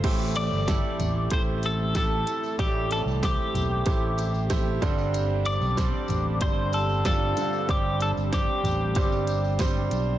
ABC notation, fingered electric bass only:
X:1
M:4/4
L:1/16
Q:1/4=94
K:Am
V:1 name="Fingered electric bass" clef=bass
A,,,3 G,,,2 z A,,,2 A,,,6 z2 | A,,,3 C,,2 z B,,,2 A,,,6 G,,,2- | G,,,3 B,,,2 z A,,,2 G,,,6 z2 | G,,,3 G,,,2 z A,,,2 G,,,6 B,,,2 |]